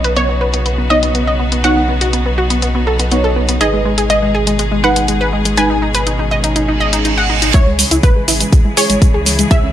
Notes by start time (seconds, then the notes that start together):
Already playing: B1 C#3 F#3 B3 D#4 F#4 C#5 D#5
0.04 B4, closed hi-hat
0.16 B3 C#5, closed hi-hat
0.29 B3
0.41 B4
0.54 B3, closed hi-hat
0.66 B3, closed hi-hat
0.78 B3
0.90 B3 D#4 C#5 D#5
1.03 B3, closed hi-hat
1.15 B3, closed hi-hat
1.27 D#5
1.39 B3
1.52 B3, closed hi-hat
1.64 B3 D#4 F#4 C#5 F#5, closed hi-hat
1.77 B3
1.89 B3
2.01 F#4, closed hi-hat
2.13 B3, closed hi-hat
2.26 B3
2.38 F#4
2.50 B3, closed hi-hat
2.62 B3, closed hi-hat
2.75 B3
2.87 A4
2.99 B3, closed hi-hat
3.12 B3 D#4 C#5, closed hi-hat
3.24 A4
3.36 B3
3.49 B3, closed hi-hat
3.61 G#1 B2 D#3 G#3 D#4 G#4 B4 D#5, closed hi-hat
3.73 G#3
3.85 G#3
3.98 G#4, closed hi-hat
4.10 G#3 D#5, closed hi-hat
4.22 G#3
4.35 G#4
4.47 G#3, closed hi-hat
4.59 G#3, closed hi-hat
4.72 G#3
4.84 G#3 D#4 B4 F#5
4.96 G#3, closed hi-hat
5.08 G#3, closed hi-hat
5.21 B4
5.33 G#3
5.45 G#3, closed hi-hat
5.57 G#3 C#4 D#4 B4 G#5, closed hi-hat
5.70 D#4
5.82 D#4
5.95 B4, closed hi-hat
6.07 D#4, closed hi-hat
6.19 D#4
6.31 D#5
6.44 D#4, closed hi-hat
6.56 D#4, closed hi-hat, reverse cymbal
6.68 D#4
6.80 D#5
6.93 D#4, closed hi-hat
7.05 D#4, closed hi-hat
7.18 F#5
7.30 D#4
7.42 D#4, closed hi-hat
7.54 C#2 C#3 E3 G#3 E4 G#4 C#5, kick, closed hi-hat, riser, shaker
7.67 G#3
7.79 G#3, open hi-hat, shaker
7.91 C#2 E4, closed hi-hat, shaker
8.03 G#3 B4, kick, closed hi-hat, shaker
8.16 G#3
8.28 G#1 E4, open hi-hat, shaker
8.40 G#3, closed hi-hat, shaker
8.53 C#2 G#3, kick, closed hi-hat, shaker
8.65 G#3
8.77 G#3 E4 G#4 C#5, open hi-hat, shaker
8.90 G#1 G#3, closed hi-hat, shaker
9.02 G#3, kick, closed hi-hat, shaker
9.14 C#2 G#4
9.26 G#3, open hi-hat, shaker
9.39 G#3, closed hi-hat, shaker
9.51 C#2 G#3 E4 G#4 C#5 E5, kick, closed hi-hat, shaker
9.63 C#4